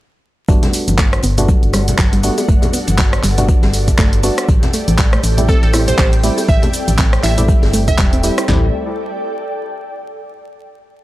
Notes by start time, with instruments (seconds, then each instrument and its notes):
0.48 fm bass G1, synth arpeggio sound F#3, string machine G3 B3 D4 F#4 A4, synth stab G3 A3 B3 D4 F#4, ambient pad A4, kick, closed hi-hat, cabasa
0.63 synth arpeggio sound G3, snare, closed hi-hat, high bongo, low conga
0.73 closed hi-hat, open hi-hat, cabasa
0.88 fm bass G1, closed hi-hat, high conga, cabasa
0.98 synth arpeggio sound A3, kick, snare, clap, closed hi-hat, cabasa
1.06 ambient pad F#5
1.13 cross-stick, closed hi-hat
1.22 fm bass G1, synth arpeggio sound B3, closed hi-hat, open hi-hat, cabasa
1.38 synth stab G3 A3 B3 D4 F#4, closed hi-hat, low conga, cabasa
1.48 synth arpeggio sound F#3, ambient pad D5, kick, closed hi-hat, cabasa
1.63 fm bass G1, closed hi-hat
1.73 synth arpeggio sound G3, cross-stick, closed hi-hat, open hi-hat, high bongo, cabasa
1.88 closed hi-hat, low conga, cabasa
1.98 fm bass G1, synth arpeggio sound F#3, kick, snare, clap, closed hi-hat, cabasa
2.13 synth arpeggio sound G3, closed hi-hat
2.23 synth stab G3 A3 B3 D4 F#4, closed hi-hat, open hi-hat, cabasa
2.38 open hi-hat, high bongo, cabasa
2.48 fm bass G1, synth arpeggio sound A3, kick, closed hi-hat, cabasa
2.62 closed hi-hat, high bongo, low conga
2.73 synth arpeggio sound B3, closed hi-hat, open hi-hat, cabasa
2.88 fm bass G1, closed hi-hat, high conga, cabasa
2.98 synth arpeggio sound F#3, kick, snare, clap, closed hi-hat, cabasa
3.13 cross-stick, closed hi-hat
3.23 fm bass G1, synth arpeggio sound G3, clap, closed hi-hat, open hi-hat, cabasa
3.38 synth stab G3 A3 B3 D4 F#4, closed hi-hat, low conga, cabasa
3.48 synth arpeggio sound F#3, kick, closed hi-hat, cabasa
3.62 fm bass G1, synth arpeggio sound G3, snare, open hi-hat, high bongo
3.74 closed hi-hat, open hi-hat, cabasa
3.87 kick, closed hi-hat, low conga, cabasa
3.98 fm bass G1, synth arpeggio sound A3, kick, snare, clap, closed hi-hat, cabasa
4.13 closed hi-hat
4.23 synth stab G3 A3 B3 D4 F#4, synth arpeggio sound B3, closed hi-hat, open hi-hat, cabasa
4.38 cross-stick, closed hi-hat, cabasa
4.48 fm bass A1, synth arpeggio sound G3, string machine A3 C4 E4 G4 G5, kick, closed hi-hat, cabasa
4.63 snare, closed hi-hat, high bongo, low conga
4.74 synth arpeggio sound A3, closed hi-hat, open hi-hat, cabasa
4.88 fm bass A1, closed hi-hat, high conga, cabasa
4.92 ambient pad G5
4.98 synth arpeggio sound G3, kick, snare, clap, closed hi-hat, cabasa
5.13 synth arpeggio sound A3, cross-stick, closed hi-hat
5.23 fm bass A1, closed hi-hat, open hi-hat, cabasa
5.37 synth stab G3 A3 C4 E4 G4, closed hi-hat, low conga, cabasa
5.49 synth arpeggio sound C4, synth pluck A4, kick, closed hi-hat, cabasa
5.63 fm bass A1, synth pluck A4, closed hi-hat
5.73 synth arpeggio sound E4, cross-stick, closed hi-hat, open hi-hat, high bongo, cabasa
5.88 synth pluck C5, closed hi-hat, low conga, cabasa
5.98 fm bass A1, synth arpeggio sound G3, synth pluck C5, kick, snare, clap, closed hi-hat, cabasa
6.13 closed hi-hat
6.24 synth stab G3 A3 C4 E4 G4, synth arpeggio sound A3, closed hi-hat, open hi-hat, cabasa
6.38 open hi-hat, high bongo, cabasa
6.48 fm bass A1, synth arpeggio sound G3, synth pluck E5, kick, closed hi-hat, cabasa
6.62 synth arpeggio sound A3, closed hi-hat, high bongo, low conga
6.73 closed hi-hat, open hi-hat, cabasa
6.88 fm bass A1, closed hi-hat, high conga, cabasa
6.98 synth arpeggio sound C4, kick, snare, clap, closed hi-hat, cabasa
7.13 cross-stick, closed hi-hat
7.23 fm bass A1, synth arpeggio sound E4, synth pluck E5, clap, closed hi-hat, open hi-hat, cabasa
7.37 synth stab G3 A3 C4 E4 G4, closed hi-hat, low conga, cabasa
7.49 synth arpeggio sound G3, kick, closed hi-hat, cabasa
7.63 fm bass G1, snare, open hi-hat, high bongo
7.73 synth arpeggio sound A3, closed hi-hat, open hi-hat, cabasa
7.88 synth pluck E5, kick, closed hi-hat, low conga, cabasa
7.98 fm bass E1, synth arpeggio sound G3, kick, snare, clap, closed hi-hat, cabasa
8.13 synth arpeggio sound C4, closed hi-hat
8.23 synth stab G3 A3 C4 E4 G4, closed hi-hat, open hi-hat, cabasa
8.38 synth arpeggio sound E4, cross-stick, closed hi-hat, cabasa
8.49 fm bass A1, synth arpeggio sound G3, synth stab G3 A3 C4 E4 G4, ambient pad A4, snare, clap, floor tom
8.57 ambient pad D5
8.65 ambient pad G5